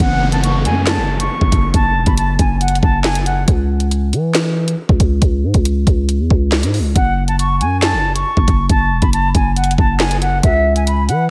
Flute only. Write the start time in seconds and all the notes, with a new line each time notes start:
0.00 F#5
0.32 A5
0.44 C#6
0.65 G#5
0.87 A5
1.20 C#6
1.74 A5
2.06 B5
2.18 A5
2.39 G#5
2.61 F#5
2.82 A5
3.04 G#5
3.26 F#5
6.96 F#5
7.28 A5
7.39 C#6
7.61 G#5
7.83 A5
8.15 C#6
8.70 A5
9.02 B5
9.13 A5
9.35 G#5
9.56 F#5
9.78 A5
10.00 G#5
10.22 F#5
10.43 E5
10.76 G#5
10.87 B5
11.08 F#5